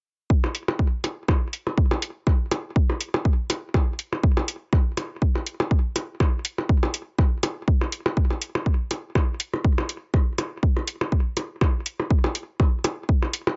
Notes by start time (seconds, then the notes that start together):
0.30 kick
0.44 percussion blips
0.55 closed hi-hat
0.68 percussion blips
0.79 kick
1.04 closed hi-hat, percussion blips
1.28 kick, percussion blips
1.53 closed hi-hat
1.67 percussion blips
1.78 kick
1.91 percussion blips
2.02 closed hi-hat
2.27 kick, percussion blips
2.51 closed hi-hat, percussion blips
2.76 kick
2.90 percussion blips
3.01 closed hi-hat
3.14 percussion blips
3.25 kick
3.50 closed hi-hat, percussion blips
3.74 kick, percussion blips
3.99 closed hi-hat
4.13 percussion blips
4.23 kick
4.37 percussion blips
4.48 closed hi-hat
4.73 kick, percussion blips
4.97 closed hi-hat, percussion blips
5.22 kick
5.35 percussion blips
5.47 closed hi-hat
5.60 percussion blips
5.71 kick
5.96 closed hi-hat, percussion blips
6.20 kick, percussion blips
6.45 closed hi-hat
6.58 percussion blips
6.69 kick
6.83 percussion blips
6.94 closed hi-hat
7.19 kick, percussion blips
7.43 closed hi-hat, percussion blips
7.68 kick
7.81 percussion blips
7.92 closed hi-hat
8.06 percussion blips
8.17 kick
8.30 percussion blips
8.42 closed hi-hat
8.55 percussion blips
8.66 kick
8.91 closed hi-hat, percussion blips
9.15 kick, percussion blips
9.40 closed hi-hat
9.54 percussion blips
9.65 kick
9.78 percussion blips
9.89 closed hi-hat
10.14 kick, percussion blips
10.38 closed hi-hat, percussion blips
10.63 kick
10.77 percussion blips
10.88 closed hi-hat
11.01 percussion blips
11.12 kick
11.37 closed hi-hat, percussion blips
11.61 kick, percussion blips
11.86 closed hi-hat
12.00 percussion blips
12.11 kick
12.24 percussion blips
12.35 closed hi-hat
12.60 kick, percussion blips
12.84 closed hi-hat, percussion blips
13.09 kick
13.22 percussion blips
13.33 closed hi-hat
13.47 percussion blips